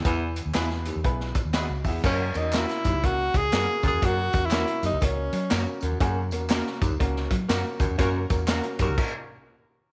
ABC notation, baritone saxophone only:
X:1
M:4/4
L:1/8
Q:"Swing" 1/4=121
K:F#mix
V:1 name="Baritone saxophone" clef=bass
E,, z2 D,, z3 E,, | F,, z2 D,, z3 F,, | F,, z2 D,, z3 F,, | F,, z2 D,, z3 F,, |
F,, z2 D,, z4 |]